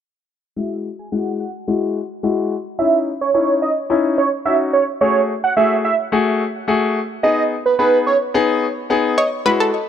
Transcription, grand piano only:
0.57 G#3 E4 F#4
1.12 G#3 E4 F#4
1.68 G#3 E4 F#4
2.23 G#3 E4 F#4
2.79 C#4 D#4 E4
3.34 C#4 D#4 E4
3.90 C#4 D#4 E4
4.45 C#4 D#4 F#4
5.01 A3 F#4 G#4
5.57 A3 F#4 G#4
6.12 A3 F#4 G#4
6.68 A3 F#4 G#4
7.23 B3 D#4 G#4
7.79 B3 D#4 G#4
8.34 B3 D#4 G#4
8.90 B3 D#4 G#4
9.45 G#3 E4 F#4

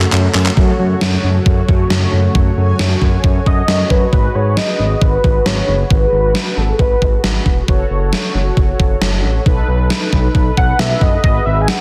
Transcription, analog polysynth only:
Already playing: F#4 A4 C#5
0.57 F#4 A4 C#5
4.13 F#4 G#4 B4
7.68 F#4 A4 C#5
9.46 D#4 A4 B4
11.24 F#4 G#4

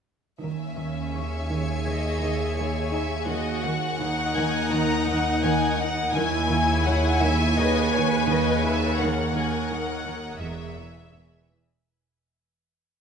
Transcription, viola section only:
0.43 C#4
1.86 G#4
3.29 F#4
4.01 D#4
6.15 E4
7.57 B4
9.00 A#4
10.42 G#4

